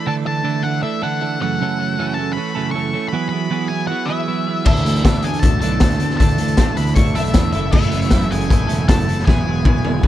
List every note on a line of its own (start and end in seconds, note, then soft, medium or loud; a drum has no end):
0.00 1.38 A4 medium
0.00 1.37 E5 medium
0.00 1.37 D6 medium
0.00 9.23 E6 medium
0.06 0.42 D3 loud
0.06 0.44 E3 loud
0.06 0.27 A3 loud
0.06 0.25 D4 loud
0.06 0.25 A4 loud
0.06 0.12 A5 loud
0.25 0.44 A3 medium
0.25 0.44 D4 medium
0.25 0.44 A4 medium
0.25 0.62 A5 loud
0.44 0.83 D3 loud
0.44 0.82 E3 loud
0.44 0.66 A3 loud
0.44 0.64 D4 loud
0.44 0.63 A4 loud
0.63 0.82 A3 medium
0.63 0.83 D4 medium
0.63 0.83 A4 medium
0.63 0.81 F#5 medium
0.82 1.03 E3 medium
0.82 1.01 A3 medium
0.82 1.01 D4 medium
0.82 1.01 A4 medium
0.82 1.03 E5 medium
1.02 1.41 D3 medium
1.02 1.20 E3 medium
1.02 1.20 A3 medium
1.02 1.21 D4 medium
1.02 1.21 A4 medium
1.02 1.41 F#5 medium
1.21 1.41 E3 medium
1.21 1.40 A3 medium
1.21 1.40 D4 medium
1.21 1.39 A4 medium
1.40 1.59 F#2 medium
1.40 1.60 C#3 medium
1.40 1.61 E3 medium
1.40 1.61 A3 medium
1.40 1.61 C#4 medium
1.40 1.61 A4 medium
1.40 3.14 A4 medium
1.40 2.21 F#5 loud
1.40 4.65 F#5 medium
1.40 3.13 C#6 medium
1.61 1.97 F#2 loud
1.61 1.98 C#3 loud
1.61 1.81 E3 loud
1.61 1.80 A3 loud
1.61 1.79 C#4 loud
1.61 1.78 A4 loud
1.79 1.99 E3 medium
1.79 1.98 A3 medium
1.79 1.98 C#4 medium
1.79 1.99 A4 medium
1.98 2.37 F#2 loud
1.98 2.37 C#3 loud
1.98 2.19 E3 loud
1.98 2.17 A3 medium
1.98 2.16 C#4 loud
1.98 2.15 A4 loud
2.14 2.35 A3 medium
2.14 2.36 C#4 medium
2.14 2.36 A4 medium
2.14 2.32 A5 loud
2.19 2.35 E3 medium
2.33 2.56 E3 medium
2.33 2.55 A3 medium
2.33 2.54 C#4 medium
2.33 2.71 B5 loud
2.37 2.54 A4 medium
2.55 2.95 F#2 medium
2.55 2.95 C#3 medium
2.55 2.73 E3 medium
2.55 2.74 A3 medium
2.55 2.74 C#4 medium
2.55 2.75 A4 loud
2.71 2.95 E3 medium
2.71 2.94 A3 medium
2.71 3.08 C#6 loud
2.76 2.93 C#4 medium
2.76 2.92 A4 medium
2.93 3.12 E3 medium
2.93 3.13 A3 medium
2.93 3.12 C#4 medium
2.93 3.12 A4 medium
3.09 3.50 E3 loud
3.09 3.50 F#3 loud
3.09 3.28 B5 loud
3.09 4.65 B5 medium
3.14 3.33 B3 loud
3.14 3.33 E4 loud
3.14 4.66 G#4 medium
3.14 3.31 G#4 loud
3.29 3.51 G#4 medium
3.29 3.67 B5 loud
3.33 3.50 B3 medium
3.33 3.52 E4 medium
3.50 3.92 E3 loud
3.50 3.88 F#3 loud
3.50 3.71 B3 loud
3.50 3.70 E4 loud
3.50 3.68 G#4 loud
3.68 3.89 B3 medium
3.68 3.90 E4 medium
3.68 3.90 G#4 medium
3.68 3.87 G#5 medium
3.86 4.08 F#3 medium
3.86 4.09 B3 medium
3.86 4.08 E4 medium
3.86 4.04 F#4 medium
3.86 4.09 F#5 loud
3.91 4.07 G#4 medium
4.05 4.61 E4 medium
4.05 4.28 E4 medium
4.05 4.28 G#4 medium
4.05 4.65 E5 medium
4.10 4.65 E3 medium
4.10 4.26 F#3 medium
4.10 4.27 B3 medium
4.28 4.65 F#3 medium
4.28 4.47 B3 medium
4.28 4.48 E4 medium
4.28 4.45 G#4 medium
4.47 4.66 B3 medium
4.47 4.66 E4 medium
4.47 4.65 G#4 medium
4.64 4.84 D2 loud
4.64 5.04 D3 loud
4.64 5.03 E3 loud
4.64 4.86 A3 loud
4.64 9.23 A3 medium
4.64 4.85 D4 loud
4.64 5.19 E4 medium
4.64 4.84 A4 loud
4.64 5.26 E5 loud
4.64 7.52 E5 medium
4.64 7.52 D6 medium
4.64 kick loud
4.64 crash loud
4.76 closed hi-hat medium
4.84 5.03 D2 medium
4.84 5.04 A3 medium
4.84 5.05 D4 medium
4.84 5.05 A4 medium
4.84 closed hi-hat medium
4.95 closed hi-hat medium
5.04 5.22 D2 medium
5.04 5.43 D3 loud
5.04 5.42 E3 loud
5.04 5.25 A3 loud
5.04 5.23 D4 loud
5.04 5.23 A4 loud
5.04 kick loud
5.04 snare loud
5.04 closed hi-hat loud
5.14 closed hi-hat soft
5.21 5.42 D2 medium
5.21 5.43 D4 medium
5.21 5.42 G#4 medium
5.21 5.44 A4 medium
5.21 5.39 G#5 medium
5.21 closed hi-hat medium
5.25 5.43 A3 medium
5.34 closed hi-hat medium
5.39 5.63 E3 medium
5.39 5.63 A3 medium
5.39 5.60 A4 medium
5.39 5.59 A5 loud
5.39 kick loud
5.39 closed hi-hat loud
5.44 5.61 D2 medium
5.44 5.62 D4 medium
5.44 5.61 A4 medium
5.61 5.79 B1 medium
5.61 6.02 D3 medium
5.61 5.80 E3 medium
5.61 5.82 A3 medium
5.61 5.82 D4 loud
5.61 6.16 A4 medium
5.61 5.83 A4 loud
5.61 6.16 A5 loud
5.61 closed hi-hat medium
5.80 5.99 D2 medium
5.80 6.19 E3 medium
5.80 6.02 A3 medium
5.80 6.00 D4 medium
5.80 6.00 A4 medium
5.80 kick loud
5.80 snare loud
5.80 closed hi-hat loud
5.91 snare soft
5.91 closed hi-hat medium
6.00 6.18 D2 medium
6.00 6.20 A3 medium
6.00 6.20 D4 medium
6.00 6.21 A4 medium
6.00 closed hi-hat medium
6.10 snare soft
6.17 6.38 D2 loud
6.17 6.57 D3 loud
6.17 6.58 E3 loud
6.17 6.41 A3 loud
6.17 6.39 D4 loud
6.17 6.73 A4 medium
6.17 6.78 A5 loud
6.17 kick loud
6.17 closed hi-hat loud
6.21 6.39 A4 loud
6.29 closed hi-hat medium
6.38 6.56 D2 medium
6.38 6.58 A3 medium
6.38 6.58 D4 medium
6.38 6.59 A4 medium
6.38 closed hi-hat medium
6.48 closed hi-hat medium
6.57 6.76 D2 medium
6.57 6.97 D3 loud
6.57 6.96 E3 loud
6.57 6.79 A3 loud
6.57 6.77 D4 loud
6.57 6.77 A4 loud
6.57 kick loud
6.57 snare loud
6.57 closed hi-hat loud
6.75 6.95 D2 medium
6.75 6.96 D4 medium
6.75 6.97 A4 medium
6.75 6.92 B4 medium
6.75 6.95 B5 medium
6.75 closed hi-hat medium
6.80 6.96 A3 medium
6.86 closed hi-hat soft
6.93 7.16 E3 medium
6.93 7.13 C#5 medium
6.93 7.14 C#6 loud
6.93 kick loud
6.93 closed hi-hat loud
6.97 7.14 D2 medium
6.97 7.14 A3 medium
6.97 7.14 D4 medium
6.97 7.14 A4 medium
7.06 closed hi-hat soft
7.13 7.33 B1 medium
7.13 7.54 D3 medium
7.13 7.35 E3 medium
7.13 7.35 A3 medium
7.13 7.35 D4 loud
7.13 7.50 E4 medium
7.13 7.36 A4 loud
7.13 7.52 E5 medium
7.13 closed hi-hat medium
7.24 closed hi-hat soft
7.34 7.52 E2 medium
7.34 7.56 E3 medium
7.34 7.54 A3 medium
7.34 7.54 D4 medium
7.34 7.53 A4 medium
7.34 kick loud
7.34 snare loud
7.34 closed hi-hat loud
7.43 snare soft
7.51 7.72 F#1 medium
7.51 7.73 A3 medium
7.51 7.69 E4 medium
7.51 7.75 E4 medium
7.51 7.74 A4 medium
7.51 7.71 E5 medium
7.51 10.07 F#5 medium
7.51 9.25 C#6 medium
7.51 closed hi-hat medium
7.56 7.72 F#2 medium
7.56 7.72 C#3 medium
7.56 7.74 E3 medium
7.70 7.91 F#1 loud
7.70 8.11 F#2 loud
7.70 8.12 C#3 loud
7.70 8.25 E4 medium
7.70 8.32 E5 loud
7.70 kick loud
7.70 crash loud
7.74 7.94 E3 loud
7.74 7.93 A3 loud
7.74 7.93 E4 loud
7.74 7.91 A4 loud
7.82 closed hi-hat medium
7.92 8.10 F#1 medium
7.92 8.13 E3 medium
7.92 8.12 A3 medium
7.92 8.14 E4 medium
7.92 8.13 A4 medium
7.92 closed hi-hat medium
8.02 closed hi-hat medium
8.10 8.29 F#1 loud
8.10 8.51 F#2 loud
8.10 8.51 C#3 loud
8.10 8.33 E3 loud
8.10 8.32 A3 loud
8.10 kick loud
8.10 snare loud
8.10 closed hi-hat loud
8.14 8.32 E4 loud
8.14 8.30 A4 loud
8.21 closed hi-hat soft
8.31 8.48 F#1 medium
8.31 8.49 E3 medium
8.31 8.48 A3 medium
8.31 8.50 E4 medium
8.31 8.85 G#4 medium
8.31 8.50 A4 medium
8.31 8.88 G#5 medium
8.31 closed hi-hat medium
8.41 closed hi-hat medium
8.49 8.67 F#1 loud
8.49 8.69 E3 medium
8.49 8.67 A3 medium
8.49 8.68 E4 medium
8.49 8.66 A4 medium
8.49 kick loud
8.49 closed hi-hat loud
8.67 8.86 E1 medium
8.67 9.08 F#2 medium
8.67 9.08 C#3 medium
8.67 8.87 E3 medium
8.67 8.86 A3 medium
8.67 8.88 E4 medium
8.67 8.87 A4 medium
8.67 closed hi-hat medium
8.86 9.06 F#1 medium
8.86 9.10 E3 medium
8.86 9.08 A3 medium
8.86 9.08 E4 medium
8.86 9.23 A4 medium
8.86 9.06 A4 medium
8.86 9.25 A5 medium
8.86 kick loud
8.86 snare loud
8.86 closed hi-hat loud
8.99 snare soft
8.99 closed hi-hat medium
9.08 9.25 F#1 medium
9.08 9.27 E3 medium
9.08 9.26 A3 medium
9.08 9.28 E4 medium
9.08 9.26 A4 medium
9.08 closed hi-hat medium
9.19 snare soft
9.26 9.44 E1 loud
9.26 9.63 E3 loud
9.26 9.63 F#3 loud
9.26 9.47 B3 loud
9.26 9.46 E4 loud
9.26 10.07 G#4 medium
9.26 9.45 G#4 loud
9.26 10.07 G#5 loud
9.26 10.07 B5 medium
9.26 10.07 E6 medium
9.26 kick loud
9.26 snare medium
9.46 9.64 E1 loud
9.46 9.64 B3 medium
9.46 9.65 E4 medium
9.46 9.65 G#4 medium
9.64 9.83 E1 loud
9.64 10.03 E3 medium
9.64 10.02 F#3 loud
9.64 9.85 B3 loud
9.64 9.85 E4 loud
9.64 9.83 G#4 loud
9.64 kick loud
9.64 high tom medium
9.84 10.02 E1 medium
9.84 10.03 B3 medium
9.84 10.03 E4 medium
9.84 10.03 G#4 medium
9.84 high tom medium
10.03 10.07 E1 medium
10.03 10.07 F#3 medium
10.03 10.07 B3 medium
10.03 10.07 E4 medium
10.03 kick loud
10.03 mid tom medium